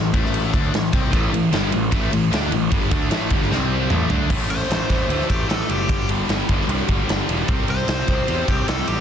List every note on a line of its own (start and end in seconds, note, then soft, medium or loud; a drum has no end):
0.00 0.13 A1 medium
0.00 0.10 E3 medium
0.13 0.50 A1 loud
0.13 0.52 A2 medium
0.13 0.53 E3 loud
0.13 0.52 A3 loud
0.13 kick loud
0.13 ride medium
0.25 snare soft
0.34 ride loud
0.53 0.72 D2 loud
0.53 0.72 D3 loud
0.53 0.73 A3 loud
0.53 0.73 D4 loud
0.53 kick loud
0.53 ride medium
0.72 0.91 A1 medium
0.72 0.89 A2 medium
0.72 0.89 E3 medium
0.72 snare loud
0.72 ride loud
0.93 1.12 C2 medium
0.93 1.12 C3 medium
0.93 1.13 G3 medium
0.93 1.13 C4 medium
0.93 kick loud
0.93 ride medium
1.13 1.31 A1 loud
1.13 1.31 A2 loud
1.13 1.32 E3 loud
1.13 1.33 A3 loud
1.13 kick loud
1.13 ride loud
1.32 1.52 A1 medium
1.32 1.48 A2 medium
1.32 1.49 E3 medium
1.32 ride medium
1.52 1.71 G1 medium
1.52 1.72 G2 loud
1.52 1.72 D3 loud
1.52 1.72 G3 loud
1.52 snare loud
1.52 ride medium
1.72 1.91 A1 medium
1.72 1.88 A2 medium
1.72 1.88 E3 medium
1.72 ride medium
1.91 2.11 A1 loud
1.91 2.11 A2 medium
1.91 2.11 E3 loud
1.91 2.12 A3 loud
1.91 kick loud
1.91 ride loud
2.11 2.30 A1 medium
2.11 2.28 A2 medium
2.11 2.28 E3 medium
2.11 ride medium
2.31 2.50 D2 loud
2.31 2.51 D3 loud
2.31 2.51 A3 loud
2.31 2.51 D4 loud
2.31 snare loud
2.31 ride loud
2.50 2.69 A1 medium
2.50 2.67 A2 medium
2.50 2.68 E3 medium
2.50 ride medium
2.71 2.90 G1 loud
2.71 2.90 G2 medium
2.71 2.90 D3 loud
2.71 2.91 G3 loud
2.71 kick loud
2.71 ride loud
2.91 3.09 D2 loud
2.91 3.10 D3 medium
2.91 3.10 A3 medium
2.91 3.11 D4 loud
2.91 kick loud
2.91 ride medium
3.10 3.29 A1 medium
3.10 3.30 A2 loud
3.10 3.30 E3 loud
3.10 3.31 A3 loud
3.10 snare loud
3.10 ride loud
3.30 3.50 G1 loud
3.30 3.50 G2 medium
3.30 3.50 D3 loud
3.30 3.50 G3 loud
3.30 kick loud
3.30 ride medium
3.42 snare soft
3.50 3.88 C2 loud
3.50 3.90 C3 medium
3.50 3.90 G3 loud
3.50 3.90 C4 loud
3.50 snare medium
3.90 4.09 A1 medium
3.90 4.10 A2 medium
3.90 4.10 E3 loud
3.90 4.09 A3 medium
3.90 mid tom loud
4.10 4.29 D2 medium
4.10 4.29 D3 medium
4.10 4.29 A3 loud
4.10 4.30 D4 loud
4.10 floor tom loud
4.29 4.44 A1 medium
4.29 4.47 A2 medium
4.29 4.48 E3 medium
4.29 4.48 A3 loud
4.29 kick loud
4.29 crash loud
4.49 4.63 A1 medium
4.49 4.68 A2 medium
4.49 4.69 E3 medium
4.49 4.70 A3 medium
4.49 5.27 C5 medium
4.49 ride medium
4.69 4.83 A1 medium
4.69 4.88 A2 medium
4.69 4.88 E3 medium
4.69 4.89 A3 medium
4.69 snare loud
4.69 ride medium
4.89 5.03 A1 medium
4.89 5.08 A2 medium
4.89 5.09 E3 medium
4.89 5.09 A3 medium
4.89 kick medium
4.89 ride medium
5.08 5.22 D2 medium
5.08 5.28 A2 medium
5.08 5.29 E3 medium
5.08 5.30 A3 loud
5.08 ride loud
5.21 snare soft
5.29 5.43 A1 medium
5.29 5.48 A2 medium
5.29 5.48 E3 medium
5.29 5.49 A3 medium
5.29 5.49 G4 medium
5.29 kick medium
5.29 ride medium
5.49 5.63 A1 medium
5.49 5.67 A2 medium
5.49 5.68 E3 medium
5.49 5.69 A3 loud
5.49 5.69 A4 medium
5.49 snare loud
5.49 ride loud
5.68 5.89 F#1 medium
5.68 5.88 A2 medium
5.68 5.88 E3 medium
5.68 5.88 A3 medium
5.68 6.09 G4 loud
5.68 ride medium
5.88 6.03 G1 loud
5.88 6.07 G2 medium
5.88 6.08 D3 medium
5.88 6.09 G3 loud
5.88 kick loud
5.88 ride loud
6.08 6.22 G1 medium
6.08 6.27 G2 medium
6.08 6.28 D3 medium
6.08 6.29 G3 medium
6.08 ride medium
6.29 6.42 G1 medium
6.29 6.48 G2 medium
6.29 6.48 D3 loud
6.29 6.50 G3 medium
6.29 snare loud
6.29 ride loud
6.49 6.62 G1 medium
6.49 6.68 G2 medium
6.49 6.68 D3 medium
6.49 6.69 G3 medium
6.49 kick medium
6.49 ride medium
6.60 snare soft
6.67 6.81 C2 medium
6.67 6.87 G2 medium
6.67 6.88 D3 medium
6.67 6.89 G3 medium
6.67 ride loud
6.88 7.02 G1 medium
6.88 7.08 G2 medium
6.88 7.08 D3 medium
6.88 7.10 G3 medium
6.88 kick medium
6.88 ride medium
7.08 7.21 G1 medium
7.08 7.28 G2 medium
7.08 7.28 D3 medium
7.08 7.29 G3 medium
7.08 snare loud
7.08 ride loud
7.28 7.42 E1 medium
7.28 7.47 G2 medium
7.28 7.48 D3 medium
7.28 7.49 G3 medium
7.28 ride medium
7.48 7.62 C2 loud
7.48 7.67 C3 loud
7.48 7.69 G3 loud
7.48 7.69 C4 medium
7.48 kick loud
7.48 ride medium
7.68 7.81 C2 medium
7.68 7.88 C3 medium
7.68 7.89 G3 medium
7.68 7.89 C4 medium
7.68 8.46 C5 loud
7.68 ride medium
7.88 8.01 C2 medium
7.88 8.08 C3 medium
7.88 8.09 G3 medium
7.88 8.09 C4 medium
7.88 snare loud
7.88 ride loud
8.08 8.21 C2 medium
8.08 8.27 C3 medium
8.08 8.28 G3 medium
8.08 8.28 C4 medium
8.08 kick medium
8.08 ride medium
8.28 8.42 E2 medium
8.28 8.47 C3 loud
8.28 8.48 G3 medium
8.28 8.48 C4 loud
8.28 ride loud
8.48 8.62 C2 medium
8.48 8.67 C3 medium
8.48 8.67 G3 medium
8.48 8.68 C4 loud
8.48 8.68 G4 medium
8.48 kick medium
8.48 ride medium
8.68 8.82 C2 medium
8.68 8.86 C3 medium
8.68 8.87 G3 medium
8.68 8.87 C4 loud
8.68 8.87 A4 medium
8.68 snare loud
8.68 ride loud
8.87 9.00 A1 medium
8.87 9.00 C3 medium
8.87 9.00 G3 medium
8.87 9.00 C4 loud
8.87 9.00 G4 loud
8.87 ride medium